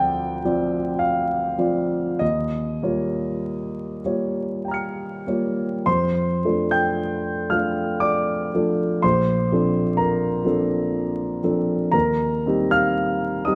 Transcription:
Already playing: D2 F3 C4 F4 D5 G5 A5
0.45 F3 C4 F4 D5
0.99 F5
1.58 F3 C4 F4 D5
2.19 D#2 D#5
2.83 G3 A#3 F4 C#5
4.04 G3 A#3 F4 C#5
4.65 G5 A#5
4.71 F6 C#7
5.27 G3 A#3 F4 C#5
5.86 F2 C5 C6
6.45 F3 A3 D4 A4
6.71 G5 G6
7.50 F3 A3 D4 A4 F5 F6
8.00 D5 D6
8.55 F3 A3 D4 A4
9.02 A#1 C5 C6
9.52 F3 C4 D4 A4
9.97 A#4 A#5
10.45 F3 C4 D4 A4
11.43 F3 C4 D4 A4
11.91 D#2 A#4 A#5
12.46 G3 C4 D#4 G4
12.71 F5 F6
13.45 G3 C4 D#4 G4 D#5 D#6

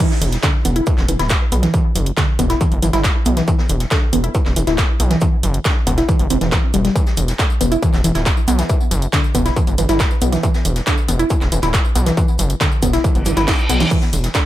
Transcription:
0.00 shaker
0.11 snare
0.22 E1, open hi-hat, shaker
0.32 snare, closed hi-hat
0.43 D3, kick, snare, clap, closed hi-hat, shaker
0.65 E1 B3, open hi-hat, shaker
0.76 E4, closed hi-hat
0.87 E3, kick, closed hi-hat, shaker
0.98 E1, snare, clap
1.08 E1 E3, open hi-hat, shaker
1.19 D1 E4, snare, closed hi-hat
1.29 kick, snare, clap, closed hi-hat, shaker
1.52 B1 B3, open hi-hat, shaker
1.63 E3, snare, closed hi-hat
1.74 E3, kick, closed hi-hat, shaker
1.95 F#1, open hi-hat, shaker
2.06 closed hi-hat
2.17 D3, kick, snare, clap, closed hi-hat, shaker
2.39 E1 B3, kick, open hi-hat, shaker
2.49 E4, snare, closed hi-hat
2.61 E3, kick, closed hi-hat, shaker
2.72 G1, open hi-hat
2.82 G1 E3, open hi-hat, shaker
2.93 G1 E4, snare, closed hi-hat
3.04 kick, snare, clap, closed hi-hat, shaker
3.25 B1 B3, open hi-hat, shaker
3.37 E3, snare, closed hi-hat
3.48 E3, kick, closed hi-hat, shaker
3.58 snare
3.69 E1, open hi-hat, shaker
3.80 snare, closed hi-hat
3.91 D3, kick, snare, clap, closed hi-hat, shaker
4.13 E1 B3, open hi-hat, shaker
4.24 E4, closed hi-hat
4.34 E3, kick, closed hi-hat, shaker
4.45 E1, snare, clap
4.56 E1 E3, open hi-hat, shaker
4.67 D1 E4, snare, closed hi-hat
4.78 kick, snare, clap, closed hi-hat, shaker
5.00 B1 B3, open hi-hat, shaker
5.10 E3, snare, closed hi-hat
5.21 E3, kick, closed hi-hat, shaker
5.43 F#1, open hi-hat, shaker
5.54 closed hi-hat
5.65 D3, kick, snare, clap, closed hi-hat, shaker
5.87 E1 B3, kick, open hi-hat, shaker
5.97 E4, snare, closed hi-hat
6.09 E3, kick, closed hi-hat, shaker
6.19 G1, open hi-hat
6.30 E1 C4, open hi-hat, shaker
6.41 E1 E3, snare, closed hi-hat
6.52 E3, kick, snare, clap, closed hi-hat, shaker
6.74 E1 G3, open hi-hat, shaker
6.85 G3, snare, closed hi-hat
6.95 E3, kick, closed hi-hat, tambourine, shaker
7.06 snare, tambourine
7.17 E1, open hi-hat, tambourine, shaker
7.28 snare, closed hi-hat, tambourine
7.39 D3, kick, snare, clap, closed hi-hat, tambourine, shaker
7.50 tambourine
7.61 E1 B3, open hi-hat, tambourine, shaker
7.72 E4, closed hi-hat, tambourine
7.82 E3, kick, closed hi-hat, tambourine, shaker
7.93 E1, snare, clap, tambourine
8.04 E1 E3, open hi-hat, tambourine, shaker
8.14 D1 E4, snare, closed hi-hat, tambourine
8.26 kick, snare, clap, closed hi-hat, tambourine, shaker
8.37 tambourine
8.47 B1 B3, open hi-hat, tambourine, shaker
8.59 E3, snare, closed hi-hat, tambourine
8.69 E3, kick, closed hi-hat, tambourine, shaker
8.80 tambourine
8.91 F#1, open hi-hat, tambourine, shaker
9.02 closed hi-hat, tambourine
9.13 D3, kick, snare, clap, closed hi-hat, tambourine, shaker
9.24 tambourine
9.34 E1 B3, kick, open hi-hat, tambourine, shaker
9.46 E4, snare, closed hi-hat, tambourine
9.56 E3, kick, closed hi-hat, tambourine, shaker
9.67 G1, open hi-hat, tambourine
9.78 G1 E3, open hi-hat, tambourine, shaker
9.88 G1 E4, snare, closed hi-hat, tambourine
10.00 kick, snare, clap, closed hi-hat, tambourine, shaker
10.11 tambourine
10.21 B1 B3, open hi-hat, tambourine, shaker
10.32 E3, snare, closed hi-hat, tambourine
10.43 E3, kick, closed hi-hat, tambourine, shaker
10.54 snare, tambourine
10.65 E1, open hi-hat, tambourine, shaker
10.76 snare, closed hi-hat, tambourine
10.87 D3, kick, snare, clap, closed hi-hat, tambourine, shaker
10.98 tambourine
11.08 E1 B3, open hi-hat, tambourine, shaker
11.19 E4, closed hi-hat, tambourine
11.30 E3, kick, closed hi-hat, tambourine, shaker
11.41 E1, snare, clap, tambourine
11.52 E1 E3, open hi-hat, tambourine, shaker
11.62 D1 E4, snare, closed hi-hat, tambourine
11.73 kick, snare, clap, closed hi-hat, tambourine, shaker
11.85 tambourine
11.95 B1 B3, open hi-hat, tambourine, shaker
12.06 E3, snare, closed hi-hat, tambourine
12.17 E3, kick, closed hi-hat, tambourine, shaker
12.28 tambourine
12.39 F#1, open hi-hat, tambourine, shaker
12.50 closed hi-hat, tambourine
12.60 D3, kick, snare, clap, closed hi-hat, tambourine, shaker
12.72 tambourine
12.82 E1 B3, kick, open hi-hat, tambourine, shaker
12.93 E4, snare, closed hi-hat, tambourine
13.04 E3, kick, closed hi-hat, tambourine, reverse cymbal, shaker
13.15 G1, open hi-hat, tambourine
13.25 G1 E3, open hi-hat, tambourine, shaker
13.36 G1 E4, snare, closed hi-hat, tambourine
13.48 kick, snare, clap, closed hi-hat, tambourine, shaker
13.59 tambourine
13.69 B1 B3, open hi-hat, tambourine, shaker
13.80 E3, snare, closed hi-hat, tambourine
13.91 E3, kick, closed hi-hat, crash, tambourine, shaker
14.01 snare, tambourine
14.13 E1, open hi-hat, tambourine, shaker
14.23 snare, closed hi-hat, tambourine
14.34 D3, kick, snare, clap, closed hi-hat, tambourine, shaker

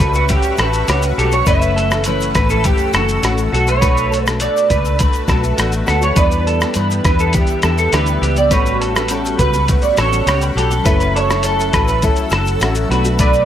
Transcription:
Already playing: A4 B4 E5 F#5 C#6
0.00 C#2 A2 G3 C#4 F#4 B4, kick, closed hi-hat, shaker
0.14 F#4, shaker
0.28 A2 G3 C#4 F#4 G4, kick, closed hi-hat, shaker
0.42 shaker
0.44 shaker
0.57 A1 A2 G3 C#4 A4 B4, cross-stick, closed hi-hat, shaker
0.62 F#4
0.73 shaker
0.87 C#2 A2 G3 C#4 F#4 G4, cross-stick, closed hi-hat, shaker
1.02 shaker
1.17 B1 A2 G3 C#4 F#4 G4 A4, closed hi-hat, shaker
1.31 G3 C#4 F#4 C#5, shaker
1.46 F#1 F#2 E3 A3 C#4 A4 B4 E5 E6, kick, closed hi-hat, shaker
1.61 shaker
1.76 A4, closed hi-hat, shaker
1.90 E3 A3 C#4, cross-stick, shaker
2.04 F#2 E3 A3 C#4 B4, closed hi-hat, shaker
2.20 shaker
2.22 shaker
2.34 A1 F#2 E3 A3 C#4 B4, kick, cross-stick, closed hi-hat, shaker
2.49 E3 A3 C#4 A4, shaker
2.63 F#2 E3 A3 C#4 G4, kick, closed hi-hat, shaker
2.77 shaker
2.79 shaker
2.93 F#1 F#2 E3 A3 C#4 F#4 A4, cross-stick, closed hi-hat, shaker
3.08 shaker
3.23 A1 F#2 E3 A3 C#4 F#4, cross-stick, closed hi-hat, shaker
3.37 shaker
3.51 B1 B2 A3 D4 F#4 A4 B4 A5, closed hi-hat, shaker
3.66 A3 D4 F#4 C#5, shaker
3.81 B2 A3 D4 F#4 B4, kick, closed hi-hat, shaker
3.97 shaker
4.11 A4, closed hi-hat, shaker
4.14 shaker
4.23 D4 F#4 B4, shaker
4.28 A3, cross-stick, shaker
4.39 B2 A3 D4 F#4 D5, closed hi-hat, shaker
4.56 shaker
4.69 C#2 B2 A3 D4 F#4 B4, kick, closed hi-hat, shaker
4.85 shaker
4.98 B2 A3 D4 F#4 B4, kick, closed hi-hat, shaker
5.13 shaker
5.15 shaker
5.27 B1 B2 A3 D4 F#4 A4, kick, cross-stick, closed hi-hat, shaker
5.41 A3 D4 F#4, shaker
5.57 A1 B2 A3 D4 F#4, cross-stick, closed hi-hat, shaker
5.72 shaker
5.86 D2 B2 A3 D4 F#4, cross-stick, closed hi-hat, shaker
5.89 F#4 A4, shaker
6.01 A3 D4 F#4 C#5, shaker
6.14 E2 E3 G3 B3 D4 E4 G4 B4 E5, kick, closed hi-hat, shaker
6.18 B4 D5
6.31 shaker
6.47 A4, closed hi-hat, shaker
6.60 B3 D4 G4, cross-stick, shaker
6.74 G2 E3 B3 D4 G4 B4, closed hi-hat, shaker
6.90 shaker
7.04 E2 E3 B3 D4 G4 B4, kick, cross-stick, closed hi-hat, shaker
7.19 A4, shaker
7.33 E3 B3 D4 G4, kick, closed hi-hat, shaker
7.47 shaker
7.50 shaker
7.62 E2 E3 B3 D4 G4 A4, cross-stick, closed hi-hat, shaker
7.78 A4, shaker
7.92 D2 E3 B3 D4 G4 B4, cross-stick, closed hi-hat, shaker
8.06 shaker
8.21 C#2 E3 B3 D4 G4, closed hi-hat, shaker
8.36 B3 D4 G4 D5, shaker
8.49 A1 A2 G3 B3 C#4 F#4 B4 C#5 F#5 B5 C#6, kick, closed hi-hat, shaker
8.53 F#4 A4
8.66 shaker
8.81 A4, closed hi-hat, shaker
8.94 G3 C#4 F#4 B4, cross-stick, shaker
9.08 A2 G3 C#4 F#4 A4, closed hi-hat, shaker
9.25 shaker
9.38 C#2 A2 G3 C#4 F#4 B4, kick, closed hi-hat, shaker
9.53 G3 C#4 F#4, shaker
9.68 A2 G3 C#4 F#4, kick, closed hi-hat, shaker
9.82 D5, shaker
9.84 shaker
9.96 A1 A2 G3 C#4 F#4 A4 C#5, cross-stick, closed hi-hat, shaker
10.10 G3 C#4 F#4, shaker
10.26 C#2 A2 G3 C#4 F#4 G4, cross-stick, closed hi-hat, shaker
10.41 B4, shaker
10.55 B1 A2 G3 C#4 F#4 G4 A4, closed hi-hat, shaker
10.70 G3 C#4 F#4, shaker
10.83 F#1 F#3 A3 C#4 E4 A4 B4 E6, kick, closed hi-hat, shaker
10.88 A4
11.00 B4, shaker
11.16 A4 C#5, closed hi-hat, shaker
11.27 C#4 E4 A4, cross-stick, shaker
11.42 F#3 C#4 E4 A4, closed hi-hat, shaker
11.59 shaker
11.71 A1 F#3 C#4 E4 A4 B4, kick, cross-stick, closed hi-hat, shaker
11.88 B4, shaker
12.01 F#3 C#4 E4 A4, kick, closed hi-hat, shaker
12.16 shaker
12.30 F#1 F#3 C#4 A4, closed hi-hat, shaker
12.32 E4 A4, cross-stick, shaker
12.45 shaker
12.47 shaker
12.60 A1 F#3 C#4 F#4, closed hi-hat, shaker
12.61 E4 A4, cross-stick, shaker
12.75 shaker
12.88 B1 B2 F#3 A3 B3 D4 F#4 B4 A5, closed hi-hat, shaker
12.92 F#4 A4
13.04 A3 D4 F#4, shaker
13.18 B2 A3 D4 F#4 B4 D5, kick, closed hi-hat, shaker
13.33 shaker

